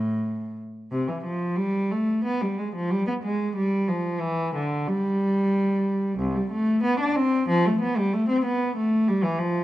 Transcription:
0, 0, Header, 1, 2, 480
1, 0, Start_track
1, 0, Tempo, 686499
1, 640, Time_signature, 4, 2, 24, 8
1, 640, Tempo, 662983
1, 3520, Tempo, 647249
1, 5920, Tempo, 625000
1, 7079, End_track
2, 0, Start_track
2, 0, Title_t, "Cello"
2, 0, Program_c, 0, 42
2, 0, Note_on_c, 0, 45, 64
2, 402, Note_off_c, 0, 45, 0
2, 640, Note_on_c, 0, 48, 63
2, 751, Note_off_c, 0, 48, 0
2, 762, Note_on_c, 0, 52, 51
2, 878, Note_on_c, 0, 53, 60
2, 881, Note_off_c, 0, 52, 0
2, 1108, Note_on_c, 0, 55, 70
2, 1114, Note_off_c, 0, 53, 0
2, 1355, Note_off_c, 0, 55, 0
2, 1358, Note_on_c, 0, 57, 61
2, 1602, Note_off_c, 0, 57, 0
2, 1604, Note_on_c, 0, 59, 66
2, 1723, Note_off_c, 0, 59, 0
2, 1724, Note_on_c, 0, 55, 56
2, 1845, Note_off_c, 0, 55, 0
2, 1845, Note_on_c, 0, 56, 47
2, 1964, Note_off_c, 0, 56, 0
2, 1970, Note_on_c, 0, 53, 58
2, 2080, Note_on_c, 0, 55, 67
2, 2082, Note_off_c, 0, 53, 0
2, 2198, Note_off_c, 0, 55, 0
2, 2201, Note_on_c, 0, 59, 58
2, 2247, Note_off_c, 0, 59, 0
2, 2317, Note_on_c, 0, 56, 59
2, 2548, Note_off_c, 0, 56, 0
2, 2556, Note_on_c, 0, 55, 64
2, 2785, Note_off_c, 0, 55, 0
2, 2788, Note_on_c, 0, 53, 63
2, 3023, Note_on_c, 0, 52, 74
2, 3025, Note_off_c, 0, 53, 0
2, 3270, Note_off_c, 0, 52, 0
2, 3272, Note_on_c, 0, 50, 62
2, 3511, Note_on_c, 0, 55, 75
2, 3516, Note_off_c, 0, 50, 0
2, 4476, Note_on_c, 0, 36, 61
2, 4478, Note_off_c, 0, 55, 0
2, 4598, Note_off_c, 0, 36, 0
2, 4601, Note_on_c, 0, 55, 53
2, 4719, Note_on_c, 0, 57, 73
2, 4723, Note_off_c, 0, 55, 0
2, 4958, Note_off_c, 0, 57, 0
2, 4959, Note_on_c, 0, 59, 81
2, 5080, Note_off_c, 0, 59, 0
2, 5081, Note_on_c, 0, 62, 68
2, 5200, Note_off_c, 0, 62, 0
2, 5201, Note_on_c, 0, 60, 79
2, 5442, Note_off_c, 0, 60, 0
2, 5444, Note_on_c, 0, 53, 82
2, 5562, Note_off_c, 0, 53, 0
2, 5570, Note_on_c, 0, 57, 70
2, 5682, Note_on_c, 0, 59, 64
2, 5687, Note_off_c, 0, 57, 0
2, 5799, Note_off_c, 0, 59, 0
2, 5803, Note_on_c, 0, 55, 70
2, 5920, Note_off_c, 0, 55, 0
2, 5922, Note_on_c, 0, 57, 70
2, 6041, Note_on_c, 0, 60, 68
2, 6042, Note_off_c, 0, 57, 0
2, 6159, Note_off_c, 0, 60, 0
2, 6169, Note_on_c, 0, 59, 64
2, 6401, Note_off_c, 0, 59, 0
2, 6409, Note_on_c, 0, 57, 68
2, 6642, Note_off_c, 0, 57, 0
2, 6651, Note_on_c, 0, 55, 73
2, 6767, Note_off_c, 0, 55, 0
2, 6767, Note_on_c, 0, 52, 68
2, 6884, Note_off_c, 0, 52, 0
2, 6885, Note_on_c, 0, 53, 76
2, 7079, Note_off_c, 0, 53, 0
2, 7079, End_track
0, 0, End_of_file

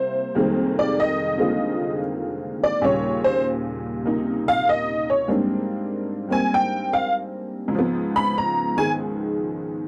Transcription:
0, 0, Header, 1, 2, 480
1, 0, Start_track
1, 0, Key_signature, -3, "major"
1, 0, Tempo, 614125
1, 281, Time_signature, 4, 2, 24, 8
1, 7721, End_track
2, 0, Start_track
2, 0, Title_t, "Honky-tonk piano"
2, 0, Program_c, 0, 3
2, 0, Note_on_c, 0, 48, 49
2, 0, Note_on_c, 0, 55, 45
2, 0, Note_on_c, 0, 58, 44
2, 0, Note_on_c, 0, 64, 52
2, 0, Note_on_c, 0, 72, 66
2, 265, Note_off_c, 0, 48, 0
2, 268, Note_off_c, 0, 55, 0
2, 272, Note_off_c, 0, 58, 0
2, 273, Note_on_c, 0, 41, 58
2, 277, Note_on_c, 0, 48, 52
2, 280, Note_on_c, 0, 55, 50
2, 280, Note_on_c, 0, 56, 52
2, 284, Note_on_c, 0, 51, 58
2, 284, Note_on_c, 0, 58, 50
2, 291, Note_off_c, 0, 64, 0
2, 585, Note_off_c, 0, 72, 0
2, 617, Note_on_c, 0, 74, 77
2, 761, Note_off_c, 0, 74, 0
2, 780, Note_on_c, 0, 75, 73
2, 1071, Note_off_c, 0, 56, 0
2, 1073, Note_off_c, 0, 58, 0
2, 1077, Note_on_c, 0, 50, 45
2, 1082, Note_on_c, 0, 56, 39
2, 1084, Note_on_c, 0, 58, 42
2, 1089, Note_on_c, 0, 60, 42
2, 1096, Note_on_c, 0, 65, 48
2, 1547, Note_off_c, 0, 75, 0
2, 2060, Note_on_c, 0, 74, 79
2, 2194, Note_off_c, 0, 55, 0
2, 2198, Note_off_c, 0, 41, 0
2, 2200, Note_off_c, 0, 48, 0
2, 2200, Note_off_c, 0, 50, 0
2, 2200, Note_on_c, 0, 39, 53
2, 2202, Note_off_c, 0, 56, 0
2, 2202, Note_on_c, 0, 46, 47
2, 2203, Note_off_c, 0, 51, 0
2, 2203, Note_off_c, 0, 58, 0
2, 2203, Note_off_c, 0, 74, 0
2, 2206, Note_off_c, 0, 60, 0
2, 2206, Note_on_c, 0, 55, 46
2, 2209, Note_off_c, 0, 65, 0
2, 2213, Note_on_c, 0, 49, 55
2, 2224, Note_on_c, 0, 73, 75
2, 2531, Note_off_c, 0, 73, 0
2, 2536, Note_on_c, 0, 72, 85
2, 2681, Note_off_c, 0, 72, 0
2, 3152, Note_on_c, 0, 48, 47
2, 3169, Note_on_c, 0, 58, 42
2, 3181, Note_on_c, 0, 63, 48
2, 3503, Note_on_c, 0, 77, 100
2, 3645, Note_off_c, 0, 77, 0
2, 3667, Note_on_c, 0, 75, 75
2, 3973, Note_off_c, 0, 75, 0
2, 3985, Note_on_c, 0, 73, 70
2, 4115, Note_off_c, 0, 55, 0
2, 4117, Note_off_c, 0, 58, 0
2, 4118, Note_off_c, 0, 48, 0
2, 4122, Note_off_c, 0, 39, 0
2, 4123, Note_off_c, 0, 46, 0
2, 4125, Note_on_c, 0, 44, 51
2, 4126, Note_off_c, 0, 73, 0
2, 4127, Note_on_c, 0, 55, 45
2, 4128, Note_off_c, 0, 49, 0
2, 4129, Note_on_c, 0, 58, 44
2, 4132, Note_off_c, 0, 63, 0
2, 4135, Note_on_c, 0, 60, 47
2, 4136, Note_on_c, 0, 62, 50
2, 4901, Note_off_c, 0, 55, 0
2, 4913, Note_off_c, 0, 58, 0
2, 4913, Note_on_c, 0, 55, 44
2, 4923, Note_off_c, 0, 60, 0
2, 4925, Note_on_c, 0, 58, 41
2, 4935, Note_on_c, 0, 60, 50
2, 4942, Note_on_c, 0, 80, 93
2, 5085, Note_off_c, 0, 80, 0
2, 5112, Note_on_c, 0, 79, 82
2, 5416, Note_off_c, 0, 79, 0
2, 5419, Note_on_c, 0, 77, 83
2, 5563, Note_off_c, 0, 77, 0
2, 6003, Note_on_c, 0, 37, 58
2, 6020, Note_off_c, 0, 44, 0
2, 6031, Note_on_c, 0, 44, 50
2, 6038, Note_off_c, 0, 55, 0
2, 6044, Note_off_c, 0, 58, 0
2, 6049, Note_off_c, 0, 60, 0
2, 6050, Note_off_c, 0, 62, 0
2, 6056, Note_on_c, 0, 53, 51
2, 6086, Note_on_c, 0, 59, 62
2, 6377, Note_on_c, 0, 83, 100
2, 6522, Note_off_c, 0, 83, 0
2, 6549, Note_on_c, 0, 82, 86
2, 6832, Note_off_c, 0, 44, 0
2, 6844, Note_on_c, 0, 44, 43
2, 6853, Note_on_c, 0, 51, 43
2, 6854, Note_off_c, 0, 82, 0
2, 6861, Note_on_c, 0, 80, 96
2, 6867, Note_on_c, 0, 56, 49
2, 6950, Note_off_c, 0, 80, 0
2, 7721, Note_off_c, 0, 37, 0
2, 7721, Note_off_c, 0, 44, 0
2, 7721, Note_off_c, 0, 51, 0
2, 7721, Note_off_c, 0, 53, 0
2, 7721, Note_off_c, 0, 56, 0
2, 7721, Note_off_c, 0, 59, 0
2, 7721, End_track
0, 0, End_of_file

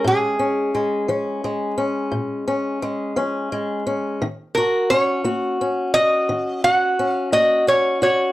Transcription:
0, 0, Header, 1, 3, 480
1, 0, Start_track
1, 0, Key_signature, -5, "minor"
1, 0, Tempo, 693642
1, 28, Time_signature, 12, 3, 24, 8
1, 5759, End_track
2, 0, Start_track
2, 0, Title_t, "Resonator guitar played with a steel bar"
2, 0, Program_c, 0, 25
2, 51, Note_on_c, 0, 68, 73
2, 973, Note_off_c, 0, 68, 0
2, 3146, Note_on_c, 0, 70, 67
2, 3391, Note_on_c, 0, 73, 85
2, 3394, Note_off_c, 0, 70, 0
2, 4107, Note_off_c, 0, 73, 0
2, 4109, Note_on_c, 0, 75, 95
2, 4593, Note_off_c, 0, 75, 0
2, 4596, Note_on_c, 0, 78, 92
2, 4907, Note_off_c, 0, 78, 0
2, 4907, Note_on_c, 0, 77, 92
2, 5043, Note_off_c, 0, 77, 0
2, 5072, Note_on_c, 0, 75, 88
2, 5314, Note_off_c, 0, 75, 0
2, 5317, Note_on_c, 0, 73, 85
2, 5535, Note_off_c, 0, 73, 0
2, 5556, Note_on_c, 0, 73, 77
2, 5759, Note_off_c, 0, 73, 0
2, 5759, End_track
3, 0, Start_track
3, 0, Title_t, "Steel-string acoustic guitar"
3, 0, Program_c, 1, 25
3, 0, Note_on_c, 1, 56, 55
3, 0, Note_on_c, 1, 61, 58
3, 30, Note_on_c, 1, 46, 70
3, 269, Note_off_c, 1, 61, 0
3, 272, Note_on_c, 1, 61, 54
3, 461, Note_off_c, 1, 46, 0
3, 508, Note_off_c, 1, 56, 0
3, 516, Note_on_c, 1, 56, 53
3, 750, Note_on_c, 1, 53, 56
3, 751, Note_off_c, 1, 61, 0
3, 754, Note_on_c, 1, 61, 53
3, 990, Note_off_c, 1, 56, 0
3, 998, Note_on_c, 1, 56, 53
3, 1181, Note_off_c, 1, 53, 0
3, 1226, Note_off_c, 1, 61, 0
3, 1229, Note_on_c, 1, 61, 53
3, 1464, Note_on_c, 1, 46, 65
3, 1710, Note_off_c, 1, 61, 0
3, 1713, Note_on_c, 1, 61, 59
3, 1898, Note_off_c, 1, 46, 0
3, 1945, Note_off_c, 1, 56, 0
3, 1954, Note_on_c, 1, 56, 55
3, 2188, Note_off_c, 1, 61, 0
3, 2188, Note_on_c, 1, 53, 61
3, 2191, Note_on_c, 1, 61, 59
3, 2428, Note_off_c, 1, 56, 0
3, 2437, Note_on_c, 1, 56, 57
3, 2620, Note_off_c, 1, 53, 0
3, 2672, Note_off_c, 1, 61, 0
3, 2675, Note_on_c, 1, 61, 55
3, 2912, Note_off_c, 1, 56, 0
3, 2918, Note_on_c, 1, 51, 71
3, 2938, Note_off_c, 1, 61, 0
3, 3165, Note_on_c, 1, 66, 59
3, 3345, Note_off_c, 1, 51, 0
3, 3398, Note_on_c, 1, 61, 57
3, 3629, Note_on_c, 1, 58, 59
3, 3630, Note_off_c, 1, 66, 0
3, 3633, Note_on_c, 1, 66, 63
3, 3880, Note_off_c, 1, 61, 0
3, 3883, Note_on_c, 1, 61, 52
3, 4060, Note_off_c, 1, 58, 0
3, 4114, Note_off_c, 1, 66, 0
3, 4117, Note_on_c, 1, 66, 59
3, 4353, Note_on_c, 1, 51, 65
3, 4587, Note_off_c, 1, 66, 0
3, 4595, Note_on_c, 1, 66, 66
3, 4782, Note_off_c, 1, 51, 0
3, 4836, Note_off_c, 1, 61, 0
3, 4839, Note_on_c, 1, 61, 57
3, 5064, Note_off_c, 1, 66, 0
3, 5068, Note_on_c, 1, 58, 62
3, 5072, Note_on_c, 1, 66, 64
3, 5307, Note_off_c, 1, 61, 0
3, 5310, Note_on_c, 1, 61, 52
3, 5499, Note_off_c, 1, 58, 0
3, 5540, Note_off_c, 1, 66, 0
3, 5549, Note_on_c, 1, 66, 60
3, 5759, Note_off_c, 1, 61, 0
3, 5759, Note_off_c, 1, 66, 0
3, 5759, End_track
0, 0, End_of_file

